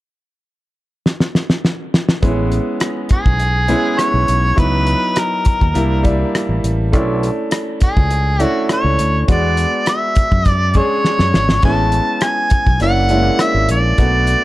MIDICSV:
0, 0, Header, 1, 6, 480
1, 0, Start_track
1, 0, Key_signature, 3, "major"
1, 0, Tempo, 588235
1, 1816, Time_signature, 4, 2, 24, 8
1, 11785, End_track
2, 0, Start_track
2, 0, Title_t, "Harmonica"
2, 0, Program_c, 0, 22
2, 2551, Note_on_c, 0, 68, 78
2, 3261, Note_on_c, 0, 73, 79
2, 3273, Note_off_c, 0, 68, 0
2, 3745, Note_on_c, 0, 71, 79
2, 3757, Note_off_c, 0, 73, 0
2, 4230, Note_on_c, 0, 70, 77
2, 4242, Note_off_c, 0, 71, 0
2, 4943, Note_off_c, 0, 70, 0
2, 6396, Note_on_c, 0, 68, 74
2, 6885, Note_off_c, 0, 68, 0
2, 6885, Note_on_c, 0, 66, 74
2, 7074, Note_off_c, 0, 66, 0
2, 7123, Note_on_c, 0, 73, 79
2, 7557, Note_off_c, 0, 73, 0
2, 7600, Note_on_c, 0, 74, 77
2, 8036, Note_off_c, 0, 74, 0
2, 8071, Note_on_c, 0, 76, 81
2, 8560, Note_off_c, 0, 76, 0
2, 8560, Note_on_c, 0, 74, 81
2, 8792, Note_on_c, 0, 73, 89
2, 8805, Note_off_c, 0, 74, 0
2, 9502, Note_off_c, 0, 73, 0
2, 9507, Note_on_c, 0, 81, 88
2, 9985, Note_on_c, 0, 80, 88
2, 9997, Note_off_c, 0, 81, 0
2, 10460, Note_off_c, 0, 80, 0
2, 10464, Note_on_c, 0, 78, 96
2, 10951, Note_on_c, 0, 76, 86
2, 10963, Note_off_c, 0, 78, 0
2, 11183, Note_off_c, 0, 76, 0
2, 11191, Note_on_c, 0, 74, 85
2, 11785, Note_off_c, 0, 74, 0
2, 11785, End_track
3, 0, Start_track
3, 0, Title_t, "Grand piano"
3, 0, Program_c, 1, 0
3, 1816, Note_on_c, 1, 59, 69
3, 1817, Note_on_c, 1, 56, 84
3, 1821, Note_on_c, 1, 61, 71
3, 1826, Note_on_c, 1, 64, 73
3, 1971, Control_c, 1, 64, 127
3, 2675, Note_off_c, 1, 59, 0
3, 2676, Note_off_c, 1, 56, 0
3, 2678, Note_off_c, 1, 61, 0
3, 2680, Note_off_c, 1, 64, 0
3, 3006, Note_on_c, 1, 56, 68
3, 3007, Note_on_c, 1, 59, 64
3, 3012, Note_on_c, 1, 61, 65
3, 3012, Note_on_c, 1, 64, 80
3, 3656, Note_off_c, 1, 56, 0
3, 3656, Note_off_c, 1, 59, 0
3, 3659, Note_off_c, 1, 61, 0
3, 3659, Note_off_c, 1, 64, 0
3, 3719, Note_on_c, 1, 54, 64
3, 3729, Note_on_c, 1, 59, 55
3, 3729, Note_on_c, 1, 63, 59
3, 3729, Note_on_c, 1, 64, 68
3, 3748, Control_c, 1, 64, 0
3, 3893, Control_c, 1, 64, 127
3, 4588, Note_off_c, 1, 54, 0
3, 4592, Note_off_c, 1, 59, 0
3, 4592, Note_off_c, 1, 63, 0
3, 4592, Note_off_c, 1, 64, 0
3, 4684, Note_on_c, 1, 55, 69
3, 4690, Note_on_c, 1, 58, 67
3, 4692, Note_on_c, 1, 62, 68
3, 4695, Note_on_c, 1, 64, 83
3, 4707, Control_c, 1, 64, 0
3, 4828, Control_c, 1, 64, 127
3, 4905, Note_off_c, 1, 55, 0
3, 4908, Note_off_c, 1, 58, 0
3, 4909, Note_off_c, 1, 62, 0
3, 4911, Note_off_c, 1, 64, 0
3, 4921, Note_on_c, 1, 55, 91
3, 4922, Note_on_c, 1, 58, 76
3, 4930, Note_on_c, 1, 62, 80
3, 4931, Note_on_c, 1, 64, 86
3, 5574, Note_off_c, 1, 55, 0
3, 5574, Note_off_c, 1, 58, 0
3, 5578, Note_off_c, 1, 62, 0
3, 5578, Note_off_c, 1, 64, 0
3, 5646, Note_on_c, 1, 57, 69
3, 5651, Note_on_c, 1, 61, 65
3, 5655, Note_on_c, 1, 62, 72
3, 5659, Note_on_c, 1, 64, 79
3, 5668, Control_c, 1, 64, 0
3, 5793, Control_c, 1, 64, 127
3, 6511, Note_off_c, 1, 57, 0
3, 6513, Note_off_c, 1, 61, 0
3, 6515, Note_off_c, 1, 62, 0
3, 6517, Note_off_c, 1, 64, 0
3, 6848, Note_on_c, 1, 57, 73
3, 6850, Note_on_c, 1, 61, 69
3, 6855, Note_on_c, 1, 62, 68
3, 6855, Note_on_c, 1, 64, 83
3, 7497, Note_off_c, 1, 57, 0
3, 7498, Note_off_c, 1, 61, 0
3, 7500, Note_off_c, 1, 62, 0
3, 7500, Note_off_c, 1, 64, 0
3, 7572, Note_on_c, 1, 59, 58
3, 7573, Note_on_c, 1, 56, 71
3, 7576, Note_on_c, 1, 62, 61
3, 7579, Note_on_c, 1, 66, 69
3, 7585, Control_c, 1, 64, 0
3, 7729, Control_c, 1, 64, 127
3, 8434, Note_off_c, 1, 56, 0
3, 8434, Note_off_c, 1, 59, 0
3, 8436, Note_off_c, 1, 62, 0
3, 8437, Note_off_c, 1, 66, 0
3, 8772, Note_on_c, 1, 56, 67
3, 8774, Note_on_c, 1, 61, 67
3, 8779, Note_on_c, 1, 62, 68
3, 8782, Note_on_c, 1, 68, 77
3, 9419, Note_off_c, 1, 56, 0
3, 9419, Note_off_c, 1, 61, 0
3, 9422, Note_off_c, 1, 62, 0
3, 9424, Note_off_c, 1, 68, 0
3, 9496, Note_on_c, 1, 56, 62
3, 9498, Note_on_c, 1, 59, 58
3, 9501, Note_on_c, 1, 61, 59
3, 9505, Note_on_c, 1, 64, 69
3, 9508, Control_c, 1, 64, 0
3, 9670, Control_c, 1, 64, 127
3, 10355, Note_off_c, 1, 56, 0
3, 10357, Note_off_c, 1, 59, 0
3, 10358, Note_off_c, 1, 61, 0
3, 10360, Note_off_c, 1, 64, 0
3, 10447, Note_on_c, 1, 58, 68
3, 10451, Note_on_c, 1, 62, 66
3, 10452, Note_on_c, 1, 61, 59
3, 10458, Note_on_c, 1, 64, 77
3, 10467, Control_c, 1, 64, 0
3, 10601, Control_c, 1, 64, 127
3, 10666, Note_off_c, 1, 58, 0
3, 10668, Note_off_c, 1, 62, 0
3, 10669, Note_off_c, 1, 61, 0
3, 10672, Note_off_c, 1, 64, 0
3, 10688, Note_on_c, 1, 56, 57
3, 10692, Note_on_c, 1, 61, 73
3, 10694, Note_on_c, 1, 62, 69
3, 10696, Note_on_c, 1, 64, 82
3, 10744, Note_on_c, 1, 58, 72
3, 10745, Note_off_c, 1, 56, 0
3, 11338, Note_off_c, 1, 61, 0
3, 11339, Note_off_c, 1, 62, 0
3, 11340, Note_off_c, 1, 64, 0
3, 11364, Note_off_c, 1, 58, 0
3, 11408, Note_on_c, 1, 57, 67
3, 11415, Note_on_c, 1, 59, 61
3, 11417, Note_on_c, 1, 62, 60
3, 11419, Note_on_c, 1, 66, 71
3, 11427, Control_c, 1, 64, 0
3, 11583, Control_c, 1, 64, 127
3, 11785, Note_off_c, 1, 57, 0
3, 11785, Note_off_c, 1, 59, 0
3, 11785, Note_off_c, 1, 62, 0
3, 11785, Note_off_c, 1, 66, 0
3, 11785, End_track
4, 0, Start_track
4, 0, Title_t, "Fingered electric bass"
4, 0, Program_c, 2, 33
4, 1817, Note_on_c, 2, 33, 96
4, 2107, Note_off_c, 2, 33, 0
4, 2656, Note_on_c, 2, 35, 72
4, 3043, Note_off_c, 2, 35, 0
4, 3376, Note_on_c, 2, 35, 81
4, 3473, Note_off_c, 2, 35, 0
4, 3499, Note_on_c, 2, 35, 80
4, 3692, Note_off_c, 2, 35, 0
4, 3734, Note_on_c, 2, 37, 87
4, 4026, Note_off_c, 2, 37, 0
4, 4581, Note_on_c, 2, 39, 73
4, 4676, Note_off_c, 2, 39, 0
4, 4694, Note_on_c, 2, 36, 90
4, 5083, Note_off_c, 2, 36, 0
4, 5295, Note_on_c, 2, 33, 77
4, 5392, Note_off_c, 2, 33, 0
4, 5417, Note_on_c, 2, 33, 74
4, 5657, Note_off_c, 2, 33, 0
4, 5657, Note_on_c, 2, 35, 102
4, 5947, Note_off_c, 2, 35, 0
4, 6504, Note_on_c, 2, 37, 90
4, 6888, Note_off_c, 2, 37, 0
4, 7216, Note_on_c, 2, 37, 81
4, 7313, Note_off_c, 2, 37, 0
4, 7339, Note_on_c, 2, 38, 72
4, 7532, Note_off_c, 2, 38, 0
4, 7579, Note_on_c, 2, 40, 95
4, 7869, Note_off_c, 2, 40, 0
4, 8418, Note_on_c, 2, 42, 79
4, 8805, Note_off_c, 2, 42, 0
4, 9136, Note_on_c, 2, 42, 78
4, 9233, Note_off_c, 2, 42, 0
4, 9256, Note_on_c, 2, 32, 73
4, 9450, Note_off_c, 2, 32, 0
4, 9493, Note_on_c, 2, 33, 85
4, 9785, Note_off_c, 2, 33, 0
4, 10335, Note_on_c, 2, 35, 64
4, 10432, Note_off_c, 2, 35, 0
4, 10455, Note_on_c, 2, 30, 100
4, 10843, Note_off_c, 2, 30, 0
4, 11051, Note_on_c, 2, 32, 79
4, 11150, Note_off_c, 2, 32, 0
4, 11170, Note_on_c, 2, 34, 68
4, 11366, Note_off_c, 2, 34, 0
4, 11411, Note_on_c, 2, 35, 83
4, 11703, Note_off_c, 2, 35, 0
4, 11785, End_track
5, 0, Start_track
5, 0, Title_t, "Muted fingered electric bass strokes"
5, 2534, Note_on_c, 9, 29, 45
5, 2616, Note_off_c, 9, 29, 0
5, 4456, Note_on_c, 9, 29, 39
5, 4538, Note_off_c, 9, 29, 0
5, 6379, Note_on_c, 9, 29, 41
5, 6460, Note_off_c, 9, 29, 0
5, 8297, Note_on_c, 9, 29, 42
5, 8379, Note_off_c, 9, 29, 0
5, 10213, Note_on_c, 9, 29, 42
5, 10294, Note_off_c, 9, 29, 0
5, 11785, End_track
6, 0, Start_track
6, 0, Title_t, "Drums"
6, 864, Note_on_c, 9, 38, 54
6, 945, Note_off_c, 9, 38, 0
6, 983, Note_on_c, 9, 38, 61
6, 1064, Note_off_c, 9, 38, 0
6, 1102, Note_on_c, 9, 38, 70
6, 1184, Note_off_c, 9, 38, 0
6, 1222, Note_on_c, 9, 38, 77
6, 1303, Note_off_c, 9, 38, 0
6, 1343, Note_on_c, 9, 38, 73
6, 1425, Note_off_c, 9, 38, 0
6, 1584, Note_on_c, 9, 38, 84
6, 1665, Note_off_c, 9, 38, 0
6, 1702, Note_on_c, 9, 38, 95
6, 1784, Note_off_c, 9, 38, 0
6, 1816, Note_on_c, 9, 42, 74
6, 1818, Note_on_c, 9, 36, 84
6, 1897, Note_off_c, 9, 42, 0
6, 1900, Note_off_c, 9, 36, 0
6, 2053, Note_on_c, 9, 42, 56
6, 2135, Note_off_c, 9, 42, 0
6, 2287, Note_on_c, 9, 42, 92
6, 2295, Note_on_c, 9, 37, 106
6, 2369, Note_off_c, 9, 42, 0
6, 2377, Note_off_c, 9, 37, 0
6, 2523, Note_on_c, 9, 42, 73
6, 2535, Note_on_c, 9, 36, 80
6, 2604, Note_off_c, 9, 42, 0
6, 2617, Note_off_c, 9, 36, 0
6, 2658, Note_on_c, 9, 36, 88
6, 2740, Note_off_c, 9, 36, 0
6, 2771, Note_on_c, 9, 42, 64
6, 2852, Note_off_c, 9, 42, 0
6, 3005, Note_on_c, 9, 42, 60
6, 3087, Note_off_c, 9, 42, 0
6, 3253, Note_on_c, 9, 37, 81
6, 3256, Note_on_c, 9, 42, 75
6, 3335, Note_off_c, 9, 37, 0
6, 3338, Note_off_c, 9, 42, 0
6, 3494, Note_on_c, 9, 42, 67
6, 3575, Note_off_c, 9, 42, 0
6, 3736, Note_on_c, 9, 36, 85
6, 3736, Note_on_c, 9, 42, 76
6, 3818, Note_off_c, 9, 36, 0
6, 3818, Note_off_c, 9, 42, 0
6, 3971, Note_on_c, 9, 42, 62
6, 4053, Note_off_c, 9, 42, 0
6, 4210, Note_on_c, 9, 42, 93
6, 4217, Note_on_c, 9, 37, 99
6, 4291, Note_off_c, 9, 42, 0
6, 4299, Note_off_c, 9, 37, 0
6, 4447, Note_on_c, 9, 42, 65
6, 4457, Note_on_c, 9, 36, 93
6, 4528, Note_off_c, 9, 42, 0
6, 4538, Note_off_c, 9, 36, 0
6, 4579, Note_on_c, 9, 37, 32
6, 4581, Note_on_c, 9, 36, 81
6, 4661, Note_off_c, 9, 37, 0
6, 4662, Note_off_c, 9, 36, 0
6, 4694, Note_on_c, 9, 42, 66
6, 4775, Note_off_c, 9, 42, 0
6, 4933, Note_on_c, 9, 42, 56
6, 4936, Note_on_c, 9, 36, 70
6, 5015, Note_off_c, 9, 42, 0
6, 5018, Note_off_c, 9, 36, 0
6, 5181, Note_on_c, 9, 37, 93
6, 5185, Note_on_c, 9, 42, 83
6, 5263, Note_off_c, 9, 37, 0
6, 5266, Note_off_c, 9, 42, 0
6, 5420, Note_on_c, 9, 42, 64
6, 5502, Note_off_c, 9, 42, 0
6, 5658, Note_on_c, 9, 42, 76
6, 5659, Note_on_c, 9, 36, 87
6, 5739, Note_off_c, 9, 42, 0
6, 5740, Note_off_c, 9, 36, 0
6, 5902, Note_on_c, 9, 42, 58
6, 5984, Note_off_c, 9, 42, 0
6, 6130, Note_on_c, 9, 42, 97
6, 6138, Note_on_c, 9, 37, 100
6, 6212, Note_off_c, 9, 42, 0
6, 6220, Note_off_c, 9, 37, 0
6, 6369, Note_on_c, 9, 42, 69
6, 6378, Note_on_c, 9, 36, 88
6, 6450, Note_off_c, 9, 42, 0
6, 6460, Note_off_c, 9, 36, 0
6, 6502, Note_on_c, 9, 36, 85
6, 6583, Note_off_c, 9, 36, 0
6, 6614, Note_on_c, 9, 42, 65
6, 6695, Note_off_c, 9, 42, 0
6, 6853, Note_on_c, 9, 42, 60
6, 6934, Note_off_c, 9, 42, 0
6, 7094, Note_on_c, 9, 37, 89
6, 7097, Note_on_c, 9, 42, 69
6, 7175, Note_off_c, 9, 37, 0
6, 7179, Note_off_c, 9, 42, 0
6, 7334, Note_on_c, 9, 42, 67
6, 7416, Note_off_c, 9, 42, 0
6, 7575, Note_on_c, 9, 42, 70
6, 7577, Note_on_c, 9, 36, 90
6, 7656, Note_off_c, 9, 42, 0
6, 7658, Note_off_c, 9, 36, 0
6, 7811, Note_on_c, 9, 42, 66
6, 7893, Note_off_c, 9, 42, 0
6, 8048, Note_on_c, 9, 42, 88
6, 8056, Note_on_c, 9, 37, 105
6, 8129, Note_off_c, 9, 42, 0
6, 8137, Note_off_c, 9, 37, 0
6, 8286, Note_on_c, 9, 42, 67
6, 8296, Note_on_c, 9, 36, 85
6, 8367, Note_off_c, 9, 42, 0
6, 8377, Note_off_c, 9, 36, 0
6, 8413, Note_on_c, 9, 37, 28
6, 8419, Note_on_c, 9, 36, 76
6, 8494, Note_off_c, 9, 37, 0
6, 8501, Note_off_c, 9, 36, 0
6, 8529, Note_on_c, 9, 42, 69
6, 8534, Note_on_c, 9, 36, 77
6, 8611, Note_off_c, 9, 42, 0
6, 8616, Note_off_c, 9, 36, 0
6, 8762, Note_on_c, 9, 42, 53
6, 8771, Note_on_c, 9, 36, 66
6, 8843, Note_off_c, 9, 42, 0
6, 8853, Note_off_c, 9, 36, 0
6, 9012, Note_on_c, 9, 38, 47
6, 9094, Note_off_c, 9, 38, 0
6, 9133, Note_on_c, 9, 38, 50
6, 9215, Note_off_c, 9, 38, 0
6, 9254, Note_on_c, 9, 38, 76
6, 9336, Note_off_c, 9, 38, 0
6, 9374, Note_on_c, 9, 38, 74
6, 9456, Note_off_c, 9, 38, 0
6, 9484, Note_on_c, 9, 55, 64
6, 9492, Note_on_c, 9, 36, 95
6, 9566, Note_off_c, 9, 55, 0
6, 9573, Note_off_c, 9, 36, 0
6, 9726, Note_on_c, 9, 42, 58
6, 9808, Note_off_c, 9, 42, 0
6, 9961, Note_on_c, 9, 42, 80
6, 9969, Note_on_c, 9, 37, 111
6, 10043, Note_off_c, 9, 42, 0
6, 10051, Note_off_c, 9, 37, 0
6, 10200, Note_on_c, 9, 42, 70
6, 10212, Note_on_c, 9, 36, 90
6, 10282, Note_off_c, 9, 42, 0
6, 10293, Note_off_c, 9, 36, 0
6, 10330, Note_on_c, 9, 37, 29
6, 10335, Note_on_c, 9, 36, 90
6, 10412, Note_off_c, 9, 37, 0
6, 10417, Note_off_c, 9, 36, 0
6, 10443, Note_on_c, 9, 42, 72
6, 10525, Note_off_c, 9, 42, 0
6, 10680, Note_on_c, 9, 42, 51
6, 10762, Note_off_c, 9, 42, 0
6, 10927, Note_on_c, 9, 37, 98
6, 10930, Note_on_c, 9, 42, 78
6, 11008, Note_off_c, 9, 37, 0
6, 11011, Note_off_c, 9, 42, 0
6, 11168, Note_on_c, 9, 42, 67
6, 11249, Note_off_c, 9, 42, 0
6, 11408, Note_on_c, 9, 42, 71
6, 11411, Note_on_c, 9, 36, 82
6, 11490, Note_off_c, 9, 42, 0
6, 11493, Note_off_c, 9, 36, 0
6, 11644, Note_on_c, 9, 42, 66
6, 11725, Note_off_c, 9, 42, 0
6, 11785, End_track
0, 0, End_of_file